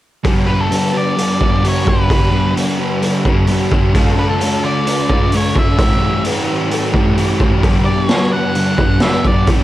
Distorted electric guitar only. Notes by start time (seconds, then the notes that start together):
0.24 G2 D3 G3
0.46 D3 G3
0.70 G2 D3 G3
1.39 D3 G3
1.63 G2 D3 G3
1.85 D3 G3
2.09 G2 D3 G3
2.31 D3 G3
2.55 G2 D3 G3
3.25 D3 G3
3.48 G2 D3 G3
3.70 D3 G3
3.93 D3 A3 D4
4.16 A3 D4
4.40 D3 A3 D4
5.09 A3 D4
5.31 D3 A3 D4
5.54 A3 D4
5.77 A2 E3 A3
6.01 E3 A3
6.24 A2 E3 A3
6.93 E3 A3
7.16 A2 E3 A3
7.40 E3 A3
7.64 G2 D3 G3
7.88 D3 G3
8.08 G2 D3 G3
8.77 D3 G3
9.00 G2 D3 G3
9.24 D3 G3
9.47 G2 D3 G3